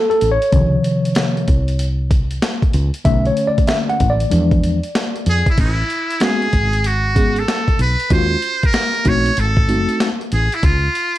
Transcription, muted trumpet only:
5.29 5.47 G#4 loud
5.49 5.59 E4 loud
5.60 6.24 E4 medium
6.23 6.88 G#4 medium
6.86 7.40 F#4 medium
7.39 7.80 A4 loud
7.81 8.10 B4 loud
8.13 8.67 C5 loud
8.65 9.09 A#4 loud
9.08 9.41 C#5 loud
9.39 10.07 A4 medium
10.33 10.55 G#4 medium
10.54 10.66 E4 medium
10.64 11.18 F4 loud

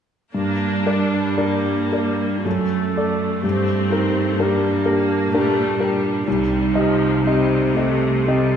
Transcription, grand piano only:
0.34 0.84 G2 soft
0.86 1.34 A#4 soft
0.86 1.34 D5 soft
1.37 1.87 D4 soft
1.37 1.88 A#4 soft
1.37 1.88 D5 soft
1.92 2.42 A#4 soft
1.92 2.43 D5 soft
2.46 2.94 F#2 soft
2.97 3.41 A4 soft
2.97 3.41 D5 soft
3.44 3.90 G2 soft
3.92 4.34 G4 soft
3.92 4.34 A#4 soft
4.39 4.81 D4 soft
4.39 4.81 G4 soft
4.39 4.81 A#4 soft
4.85 5.28 G4 soft
4.85 5.28 A#4 soft
5.34 5.77 D4 soft
5.34 5.77 G4 soft
5.34 5.77 A#4 soft
5.80 6.23 G4 soft
5.80 6.23 A#4 soft
6.28 6.74 C2 soft
6.75 7.21 G4 soft
6.75 7.21 D#5 soft
7.26 7.72 C4 soft
7.26 7.72 G4 soft
7.26 7.73 D#5 soft
7.76 8.23 G4 soft
7.76 8.23 D#5 soft
8.28 8.56 C4 soft
8.28 8.56 G4 soft
8.28 8.56 D#5 soft

